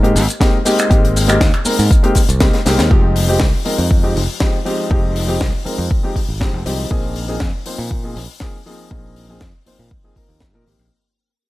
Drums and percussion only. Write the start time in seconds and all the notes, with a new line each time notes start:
0.04 closed hi-hat
0.16 open hi-hat, shaker
0.29 closed hi-hat, shaker
0.41 kick, snare, closed hi-hat, shaker
0.66 open hi-hat, shaker
0.79 finger snap, closed hi-hat, shaker
0.91 kick, closed hi-hat, shaker
1.05 closed hi-hat
1.16 open hi-hat, shaker
1.29 finger snap, closed hi-hat, shaker
1.41 kick, snare, closed hi-hat, shaker
1.54 finger snap, closed hi-hat
1.65 open hi-hat, shaker
1.79 open hi-hat, shaker
1.91 kick, closed hi-hat, shaker
2.04 closed hi-hat
2.15 kick, open hi-hat, shaker
2.29 closed hi-hat, shaker
2.40 kick, snare, closed hi-hat, shaker
2.54 snare, closed hi-hat
2.66 snare, open hi-hat, shaker
2.79 snare, closed hi-hat, shaker
2.91 kick
3.16 open hi-hat
3.40 kick, snare
3.66 open hi-hat
3.91 kick
4.17 open hi-hat
4.40 kick, snare
4.66 open hi-hat
4.91 kick
5.16 open hi-hat
5.41 kick, snare
5.66 open hi-hat
5.91 kick
6.16 kick, open hi-hat
6.41 kick, snare
6.66 open hi-hat
6.91 kick
7.16 open hi-hat
7.40 kick, snare
7.66 open hi-hat
7.91 kick
8.17 open hi-hat
8.40 kick, snare
8.67 open hi-hat
8.91 kick
9.16 open hi-hat
9.41 kick, snare
9.67 open hi-hat
9.91 kick
10.16 kick, open hi-hat
10.40 kick, snare
10.67 open hi-hat